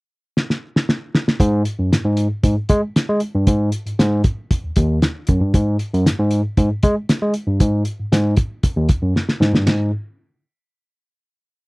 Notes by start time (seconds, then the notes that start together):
0.37 snare
0.50 snare
0.76 snare
0.89 snare
1.15 snare
1.28 snare
1.40 G#2, kick, closed hi-hat
1.65 closed hi-hat
1.79 F#2
1.92 G#2, snare, closed hi-hat
2.05 G#2
2.17 closed hi-hat
2.44 G#2, kick, closed hi-hat
2.69 G#3, kick, closed hi-hat
2.96 snare, closed hi-hat
3.09 G#3
3.20 closed hi-hat
3.35 G2
3.47 G#2, kick, closed hi-hat
3.72 closed hi-hat
3.86 G#2, closed hi-hat
3.99 G#2, snare, closed hi-hat
4.24 kick, closed hi-hat
4.51 kick, closed hi-hat
4.64 D#2
4.76 D#2, kick, closed hi-hat
5.02 snare, closed hi-hat
5.27 F#2, kick, closed hi-hat
5.41 G2
5.54 G#2, kick, closed hi-hat
5.79 closed hi-hat
5.93 F#2, closed hi-hat
6.06 G#2, snare, closed hi-hat
6.19 G#2
6.31 closed hi-hat
6.57 G#2, kick, closed hi-hat
6.83 G#3, kick, closed hi-hat
7.09 snare, closed hi-hat
7.22 G#3
7.34 closed hi-hat
7.47 G2
7.60 G#2, kick, closed hi-hat
7.85 closed hi-hat
7.99 G#2
8.12 G#2, snare, closed hi-hat
8.37 kick, closed hi-hat
8.63 kick, closed hi-hat
8.76 D#2
8.89 kick, closed hi-hat
9.02 F#2
9.16 snare
9.29 snare
9.41 G#2, snare
9.53 G2, snare
9.66 G#2, snare, ride bell